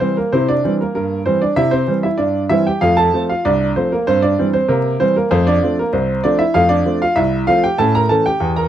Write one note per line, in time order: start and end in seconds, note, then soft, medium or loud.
0.00 0.18 E3 soft
0.00 0.17 G3 soft
0.00 0.15 C4 medium
0.00 0.16 C5 medium
0.17 0.31 A#3 medium
0.17 0.32 A#4 medium
0.32 0.58 C3 medium
0.32 0.47 C4 medium
0.32 0.51 E4 medium
0.32 0.47 C5 medium
0.48 0.77 D4 medium
0.48 0.73 D5 medium
0.64 0.81 E3 soft
0.64 0.81 G3 soft
0.64 0.81 C4 soft
0.81 0.95 A#3 medium
0.81 0.94 A#4 medium
0.95 1.21 G2 medium
0.95 1.24 A#3 medium
0.95 1.19 A#4 medium
1.25 1.42 E3 soft
1.25 1.43 G3 soft
1.25 1.40 C4 medium
1.25 1.41 C5 medium
1.42 1.56 D4 medium
1.42 1.56 D5 medium
1.56 1.82 C3 medium
1.56 1.71 E4 medium
1.56 1.72 E5 loud
1.71 1.87 C4 medium
1.71 1.96 C5 medium
1.87 2.04 E3 soft
1.87 2.05 G3 soft
1.87 2.05 C4 soft
2.03 2.18 E4 medium
2.03 2.18 E5 medium
2.17 2.44 G2 medium
2.17 2.47 D4 medium
2.17 2.43 D5 medium
2.49 2.67 E3 medium
2.49 2.67 G3 medium
2.49 2.67 C4 medium
2.49 2.64 E4 medium
2.49 2.65 E5 medium
2.67 2.81 G4 medium
2.67 2.81 G5 medium
2.81 3.07 F2 medium
2.81 3.00 A3 medium
2.81 2.96 F4 medium
2.81 2.96 F5 medium
2.97 3.26 A4 medium
2.97 3.21 A5 loud
3.13 3.30 F3 soft
3.13 3.30 A3 medium
3.13 3.30 C4 medium
3.29 3.44 F4 medium
3.29 3.44 F5 medium
3.45 3.70 C2 medium
3.45 3.73 D4 medium
3.45 3.69 D5 medium
3.76 3.93 F3 medium
3.76 3.93 A3 soft
3.76 3.90 C4 medium
3.76 3.90 C5 medium
3.92 4.06 A#3 medium
3.92 4.06 A#4 medium
4.07 4.33 G2 medium
4.07 4.21 C4 medium
4.07 4.22 C5 loud
4.22 4.51 D4 medium
4.22 4.46 D5 medium
4.39 4.55 E3 soft
4.39 4.55 G3 medium
4.39 4.53 C4 medium
4.53 4.68 C4 medium
4.53 4.68 C5 medium
4.68 4.94 C3 medium
4.68 4.97 A#3 medium
4.68 4.93 A#4 medium
5.00 5.16 E3 medium
5.00 5.17 G3 soft
5.00 5.14 C4 medium
5.00 5.15 C5 medium
5.16 5.30 A#3 medium
5.16 5.31 A#4 medium
5.31 5.57 F2 medium
5.31 5.49 A3 medium
5.31 5.45 C4 medium
5.31 5.46 C5 medium
5.47 5.75 D4 medium
5.47 5.76 D5 medium
5.62 5.79 F3 soft
5.62 5.79 A3 soft
5.62 5.80 C4 medium
5.79 5.93 A#3 medium
5.79 5.93 A#4 medium
5.93 6.19 C2 medium
5.93 6.22 C4 medium
5.93 6.22 C5 medium
6.24 6.41 F3 medium
6.24 6.41 A3 medium
6.24 6.41 C4 medium
6.24 6.38 D4 medium
6.24 6.39 D5 medium
6.39 6.54 E4 medium
6.39 6.54 E5 medium
6.54 6.81 F2 medium
6.54 6.73 A3 medium
6.54 6.69 F4 medium
6.54 6.70 F5 loud
6.69 6.99 D4 medium
6.69 6.99 D5 loud
6.85 7.02 F3 soft
6.85 7.03 A3 soft
6.85 7.03 C4 soft
7.02 7.16 F4 medium
7.02 7.17 F5 medium
7.16 7.42 C2 medium
7.16 7.45 E4 medium
7.16 7.41 E5 medium
7.47 7.64 F3 medium
7.47 7.65 A3 medium
7.47 7.65 C4 medium
7.47 7.62 F4 medium
7.47 7.63 F5 medium
7.64 7.78 G4 medium
7.64 7.79 G5 medium
7.78 8.05 A2 medium
7.78 7.97 C#4 medium
7.78 7.93 A4 medium
7.78 7.94 A5 loud
7.95 8.09 A#4 medium
7.95 8.10 A#5 loud
8.09 8.27 E3 soft
8.09 8.27 A3 medium
8.09 8.27 C#4 medium
8.09 8.25 A4 medium
8.09 8.25 A5 medium
8.26 8.55 G4 medium
8.26 8.50 G5 medium
8.40 8.67 E2 medium
8.56 8.68 A#4 medium
8.56 8.68 A#5 medium